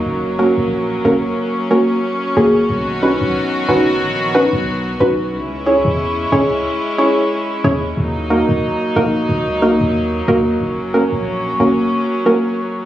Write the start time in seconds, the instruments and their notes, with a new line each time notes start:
Already playing: string section F#3 A#3
0.06 sub bass F#1, string section C#4
0.39 synth pluck A#3 C#4 F#4 A#4
0.57 sub bass A#1
1.05 sub bass F#1, synth pluck A#3 C#4 F#4 A#4
1.71 synth pluck A#3 C#4 F#4 A#4
2.37 sub bass G#1, synth pluck A#3 C#4 F#4 G#4
2.69 sub bass B1, string section D#3 F#3 B3 F#4
3.03 synth pluck C#4 D#4 F#4 B4
3.21 sub bass B1
3.68 sub bass F#1, synth pluck C#4 D#4 F#4 B4
4.01 sub bass A#1
4.34 synth pluck C#4 D#4 F#4 B4
4.53 sub bass B1
5.00 sub bass B1, synth pluck C#4 D#4 F#4 B4
5.33 sub bass C#2, string section G#3 C#4 E4
5.66 synth pluck C#4 E4 G#4 C#5
5.85 sub bass E2
6.32 sub bass C#2, synth pluck C#4 E4 G#4 C#5
6.98 synth pluck C#4 E4 G#4 C#5
7.64 sub bass D#2, synth pluck C#4 E4 G#4 C#5
7.97 sub bass D#2, string section F#3 A#3 D#4
8.30 synth pluck A#3 D#4 F#4 A#4
8.49 sub bass D#2
8.96 sub bass A#1, synth pluck A#3 D#4 F#4 A#4
9.29 sub bass C#2
9.62 synth pluck A#3 D#4 F#4 A#4
9.81 sub bass D#2
10.28 sub bass D#2, synth pluck A#3 D#4 F#4 A#4
10.61 sub bass F#1, string section C#4
10.94 synth pluck A#3 C#4 F#4 A#4
11.12 sub bass A#1
11.60 sub bass F#1, synth pluck A#3 C#4 F#4 A#4
12.26 synth pluck A#3 C#4 F#4 A#4